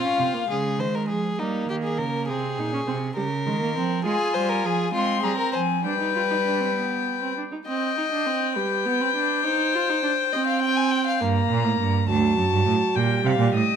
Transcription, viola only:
0.04 0.21 C#4 medium
0.20 0.36 C4 medium
0.35 0.49 A#3 medium
0.49 1.35 G#3 medium
1.40 2.31 A#3 medium
2.29 2.60 C4 medium
2.59 2.73 D#4 medium
2.73 2.79 C#4 medium
2.87 2.95 C4 medium
3.16 3.24 G3 medium
3.46 3.60 G#3 medium
3.62 3.75 A#3 medium
3.76 4.05 C4 medium
4.06 4.92 F4 medium
4.95 5.82 C4 medium
5.85 5.99 D4 medium
6.00 6.14 D#4 medium
6.15 6.21 F4 medium
6.30 6.36 D#4 medium
6.46 6.62 D4 medium
6.61 6.75 C4 medium
6.76 7.20 B3 medium
7.22 7.36 C4 soft
7.37 7.43 D4 medium
7.52 7.58 D#4 medium
7.67 7.94 C4 medium
7.97 8.03 D#4 medium
8.12 8.28 D4 medium
8.26 8.58 C4 medium
8.56 8.87 G3 medium
8.86 9.02 B3 medium
9.00 9.14 C4 medium
9.15 9.46 D4 medium
9.44 9.76 D#4 medium
9.75 9.91 F4 medium
9.89 10.02 D#4 medium
10.03 10.11 D4 medium
10.34 11.22 C4 medium
11.21 12.08 A#3 medium
12.09 12.98 F#3 medium
12.97 13.76 G3 medium

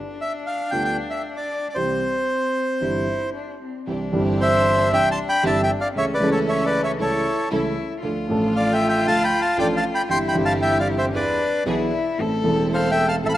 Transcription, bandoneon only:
0.21 0.33 E5 medium
0.47 0.71 F5 medium
0.71 0.83 G5 medium
0.85 0.97 G5 medium
1.10 1.22 E5 medium
1.37 1.68 D5 medium
1.70 1.77 D5 medium
1.75 3.30 C5 medium
4.41 4.89 C5 medium
4.41 4.92 E5 loud
4.93 5.09 E5 medium
4.93 5.09 G5 loud
5.11 5.19 A5 medium
5.11 5.19 C6 loud
5.29 5.44 G5 medium
5.29 5.44 B5 loud
5.46 5.61 E5 medium
5.46 5.61 A5 medium
5.63 5.71 E5 medium
5.63 5.70 G5 medium
5.81 5.88 D5 medium
5.81 5.88 F5 medium
5.98 6.05 C#5 medium
5.98 6.05 E5 loud
6.14 6.30 B4 medium
6.14 6.30 D5 medium
6.32 6.40 A4 medium
6.32 6.39 C#5 medium
6.48 6.64 C#5 medium
6.48 6.66 E5 medium
6.66 6.82 B4 medium
6.66 6.81 D5 medium
6.84 6.92 C#5 medium
6.84 6.91 E5 medium
7.01 7.49 A4 medium
7.01 7.48 C#5 medium
8.56 8.72 D5 medium
8.56 8.73 F5 medium
8.73 8.88 E5 medium
8.73 8.87 G5 medium
8.89 9.05 E5 medium
8.89 9.07 G5 medium
9.07 9.23 F5 medium
9.07 9.25 A5 loud
9.24 9.40 G5 medium
9.24 9.41 B5 loud
9.42 9.57 F5 medium
9.42 9.57 A5 medium
9.59 9.67 D5 medium
9.59 9.66 G5 medium
9.77 9.85 F5 medium
9.77 9.84 A5 medium
9.95 10.02 G5 medium
9.95 10.02 B5 loud
10.11 10.18 G5 medium
10.11 10.18 C6 loud
10.28 10.36 G5 medium
10.28 10.36 B5 medium
10.45 10.53 F5 medium
10.45 10.53 A5 loud
10.62 10.78 E5 medium
10.62 10.78 G5 medium
10.80 10.88 D5 medium
10.80 10.88 F5 medium
10.98 11.05 C5 medium
10.98 11.05 E5 medium
11.16 11.63 B4 medium
11.16 11.63 D5 medium
12.74 12.89 C5 medium
12.74 12.91 F5 medium
12.91 13.06 E5 medium
12.91 13.08 G5 medium
13.08 13.15 F5 medium
13.08 13.16 A5 medium
13.29 13.33 B5 medium
13.34 13.37 F5 medium
13.34 13.37 A5 loud

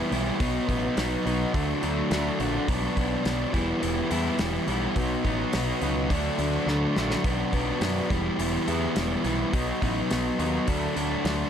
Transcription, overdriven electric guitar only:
0.00 0.10 E3 medium
0.00 0.11 G3 medium
0.00 0.12 B3 medium
0.00 0.13 E4 medium
0.12 0.38 E3 medium
0.12 0.39 G3 medium
0.12 0.39 B3 medium
0.12 0.39 E4 medium
0.40 0.67 B2 medium
0.40 0.68 F#3 medium
0.40 0.69 B3 medium
0.40 0.69 D#4 medium
0.68 0.95 B2 medium
0.68 0.96 F#3 medium
0.68 0.97 B3 medium
0.68 0.97 D#4 medium
0.96 1.24 B2 medium
0.96 1.25 F#3 medium
0.96 1.26 B3 medium
0.96 1.26 D#4 medium
1.25 1.52 B2 medium
1.25 1.53 F#3 medium
1.25 1.53 B3 medium
1.25 1.53 D#4 medium
1.54 1.82 D3 medium
1.54 1.82 F#3 medium
1.54 1.83 A3 medium
1.54 1.84 D4 loud
1.83 2.09 D3 medium
1.83 2.10 F#3 medium
1.83 2.11 A3 medium
1.83 2.12 D4 medium
2.10 2.39 D3 medium
2.10 2.39 F#3 medium
2.10 2.40 A3 medium
2.10 2.41 D4 medium
2.40 2.67 D3 medium
2.40 2.67 F#3 medium
2.40 2.67 A3 medium
2.40 2.68 D4 medium
2.69 2.96 B2 medium
2.69 2.97 F#3 medium
2.69 2.97 B3 medium
2.69 2.98 D4 loud
2.97 3.23 B2 medium
2.97 3.24 F#3 medium
2.97 3.25 B3 medium
2.97 3.25 D4 medium
3.24 3.52 B2 medium
3.24 3.52 F#3 medium
3.24 3.52 B3 medium
3.24 3.53 D4 medium
3.53 3.80 E3 medium
3.53 3.81 G3 medium
3.53 3.81 B3 medium
3.53 3.82 E4 loud
3.81 4.09 E3 medium
3.81 4.10 G3 medium
3.81 4.10 B3 medium
3.81 4.11 E4 loud
4.10 4.38 E3 medium
4.10 4.39 G3 medium
4.10 4.40 B3 medium
4.10 4.40 E4 medium
4.39 4.66 E3 medium
4.39 4.67 G3 medium
4.39 4.68 B3 medium
4.39 4.69 E4 medium
4.68 4.95 E3 medium
4.68 4.95 G3 medium
4.68 4.95 B3 medium
4.68 4.96 E4 medium
4.96 5.24 B2 medium
4.96 5.25 F#3 medium
4.96 5.25 B3 medium
4.96 5.26 D#4 medium
5.25 5.52 B2 medium
5.25 5.53 F#3 medium
5.25 5.54 B3 medium
5.25 5.54 D#4 medium
5.53 5.81 B2 medium
5.53 5.82 F#3 medium
5.53 5.82 B3 medium
5.53 5.83 D#4 medium
5.82 6.09 B2 medium
5.82 6.10 F#3 medium
5.82 6.10 B3 medium
5.82 6.10 D#4 medium
6.10 6.38 D3 medium
6.10 6.39 F#3 medium
6.10 6.39 A3 medium
6.10 6.40 D4 loud
6.39 6.66 D3 medium
6.39 6.67 F#3 medium
6.39 6.68 A3 medium
6.39 6.68 D4 medium
6.68 6.95 D3 medium
6.68 6.95 F#3 medium
6.68 6.96 A3 medium
6.68 6.96 D4 medium
6.96 7.23 D3 medium
6.96 7.23 F#3 medium
6.96 7.24 A3 medium
6.96 7.24 D4 medium
7.24 7.51 B2 medium
7.24 7.52 F#3 medium
7.24 7.53 B3 loud
7.24 7.54 D4 medium
7.53 7.81 B2 medium
7.53 7.81 F#3 medium
7.53 7.82 B3 medium
7.53 7.82 D4 medium
7.82 8.09 B2 medium
7.82 8.09 F#3 medium
7.82 8.10 B3 medium
7.82 8.10 D4 medium
8.10 8.38 E3 medium
8.10 8.39 G3 medium
8.10 8.39 B3 medium
8.10 8.40 E4 medium
8.39 8.66 E3 medium
8.39 8.67 G3 medium
8.39 8.68 B3 loud
8.39 8.68 E4 loud
8.67 8.94 E3 medium
8.67 8.95 G3 medium
8.67 8.96 B3 medium
8.67 8.97 E4 medium
8.96 9.23 E3 medium
8.96 9.24 G3 medium
8.96 9.25 B3 medium
8.96 9.25 E4 medium
9.24 9.52 E3 medium
9.24 9.52 G3 medium
9.24 9.52 B3 medium
9.24 9.53 E4 medium
9.53 9.80 B2 loud
9.53 9.80 F#3 medium
9.53 9.81 B3 medium
9.53 9.82 D#4 medium
9.81 10.08 B2 medium
9.81 10.09 F#3 medium
9.81 10.09 B3 medium
9.81 10.10 D#4 medium
10.10 10.37 B2 medium
10.10 10.38 F#3 medium
10.10 10.38 B3 medium
10.10 10.39 D#4 medium
10.38 10.66 B2 medium
10.38 10.66 F#3 medium
10.38 10.66 B3 medium
10.38 10.67 D#4 medium
10.67 10.94 D3 medium
10.67 10.95 F#3 medium
10.67 10.96 A3 loud
10.67 10.97 D4 medium
10.95 11.23 D3 medium
10.95 11.24 F#3 medium
10.95 11.25 A3 medium
10.95 11.25 D4 medium
11.24 11.50 D3 medium
11.24 11.50 F#3 medium
11.24 11.50 A3 medium
11.24 11.50 D4 medium

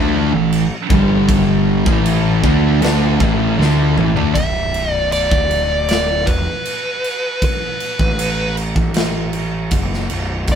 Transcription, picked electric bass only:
0.00 0.30 D2 loud
0.33 0.69 A1 medium
0.90 1.82 G1 loud
1.86 2.40 A1 loud
2.44 2.80 D2 loud
2.82 3.18 D2 medium
3.20 3.56 A1 loud
3.58 3.94 D2 medium
3.96 4.15 A1 loud
4.17 4.34 D2 loud
4.36 5.27 B0 medium
5.32 6.23 D1 medium
6.27 6.45 E1 loud
7.99 8.72 A1 loud
8.76 9.68 A1 medium
9.71 10.07 F#1 loud
10.12 10.47 B0 medium
10.48 10.55 B0 medium

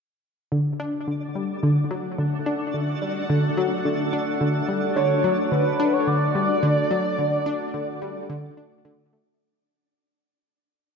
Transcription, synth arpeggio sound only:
0.52 0.74 D3 medium
0.80 0.94 D4 medium
1.07 1.29 D3 medium
1.35 1.50 G3 medium
1.63 1.78 D3 loud
1.91 2.05 F#3 medium
2.18 2.40 D3 medium
2.46 2.61 D4 medium
2.74 2.96 D3 medium
3.02 3.17 G3 medium
3.30 3.44 D3 medium
3.57 3.72 F#3 loud
3.85 4.07 D3 medium
4.13 4.28 D4 medium
4.41 4.63 D3 medium
4.69 4.83 G3 medium
4.96 5.11 D3 loud
5.24 5.39 F#3 medium
5.52 5.74 D3 medium
5.80 5.94 D4 loud
6.07 6.29 D3 medium
6.35 6.50 G3 medium
6.63 6.78 D3 loud
6.91 7.05 F#3 medium
7.18 7.40 D3 medium
7.46 7.61 D4 loud
7.74 7.96 D3 medium
8.02 8.16 G3 medium
8.30 8.44 D3 loud
8.57 8.79 D4 medium
8.85 9.00 D3 loud
9.13 9.35 A3 medium

